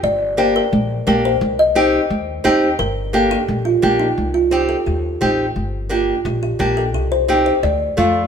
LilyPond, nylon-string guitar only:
\new Staff \with { instrumentName = "Nylon-string guitar" } { \time 4/4 \key g \minor \tempo 4 = 174 r4 <bes d' g'>8 r4. <bes d' g'>8 r8 | r4 <c' ees' g'>8 r4. <c' ees' g'>8 r8 | r4 <bes d' g'>8 r4. <bes d' g'>8 r8 | r4 <c' ees' g'>8 r4. <c' ees' g'>8 r8 |
r4 <bes d' g'>8 r4. <bes d' g'>8 r8 | r4 <c' ees' g'>8 r4. <a d' f'>8 r8 | }